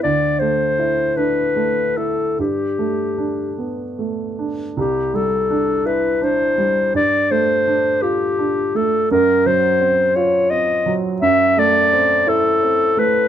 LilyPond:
<<
  \new Staff \with { instrumentName = "Clarinet" } { \time 6/8 \key g \major \tempo 4. = 56 d''8 c''4 b'4 a'8 | g'4. r4. | \key c \lydian g'8 a'4 b'8 c''4 | d''8 c''4 g'4 a'8 |
ais'8 bis'4 cis''8 ees''8 r8 | e''8 d''4 a'4 b'8 | }
  \new Staff \with { instrumentName = "Grand piano" } { \time 6/8 \key g \major d,8 a8 e'8 d'8 a8 e'8 | g,8 a8 d'8 b8 a8 d'8 | \key c \lydian c,8 g8 d'8 e'8 d'8 g8 | g,8 a8 d'8 f'8 d'8 a8 |
fis,8 fis8 bis8 eis'8 bis8 fis8 | fis,8 a8 c'8 e'8 c'8 a8 | }
>>